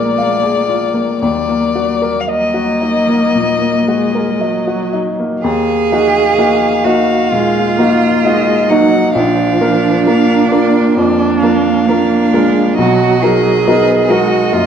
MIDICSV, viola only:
0, 0, Header, 1, 2, 480
1, 0, Start_track
1, 0, Key_signature, -6, "minor"
1, 0, Tempo, 1048951
1, 560, Time_signature, 4, 2, 24, 8
1, 2487, Tempo, 934579
1, 3927, Tempo, 907716
1, 6327, Tempo, 873362
1, 7363, End_track
2, 0, Start_track
2, 0, Title_t, "Viola"
2, 0, Program_c, 0, 41
2, 0, Note_on_c, 0, 58, 49
2, 543, Note_off_c, 0, 58, 0
2, 560, Note_on_c, 0, 58, 38
2, 979, Note_off_c, 0, 58, 0
2, 1045, Note_on_c, 0, 58, 54
2, 1772, Note_on_c, 0, 56, 46
2, 1778, Note_off_c, 0, 58, 0
2, 2013, Note_on_c, 0, 54, 46
2, 2019, Note_off_c, 0, 56, 0
2, 2487, Note_off_c, 0, 54, 0
2, 3450, Note_on_c, 0, 56, 63
2, 3687, Note_on_c, 0, 58, 50
2, 3695, Note_off_c, 0, 56, 0
2, 3930, Note_on_c, 0, 56, 54
2, 3938, Note_off_c, 0, 58, 0
2, 4167, Note_on_c, 0, 54, 52
2, 4175, Note_off_c, 0, 56, 0
2, 4407, Note_off_c, 0, 54, 0
2, 4412, Note_on_c, 0, 53, 56
2, 4894, Note_on_c, 0, 58, 60
2, 4902, Note_off_c, 0, 53, 0
2, 5372, Note_on_c, 0, 62, 63
2, 5380, Note_off_c, 0, 58, 0
2, 5845, Note_on_c, 0, 58, 60
2, 5853, Note_off_c, 0, 62, 0
2, 6088, Note_on_c, 0, 56, 58
2, 6096, Note_off_c, 0, 58, 0
2, 6327, Note_off_c, 0, 56, 0
2, 6331, Note_on_c, 0, 54, 58
2, 6819, Note_on_c, 0, 59, 54
2, 6827, Note_off_c, 0, 54, 0
2, 7055, Note_on_c, 0, 56, 51
2, 7064, Note_off_c, 0, 59, 0
2, 7289, Note_on_c, 0, 58, 52
2, 7297, Note_off_c, 0, 56, 0
2, 7363, Note_off_c, 0, 58, 0
2, 7363, End_track
0, 0, End_of_file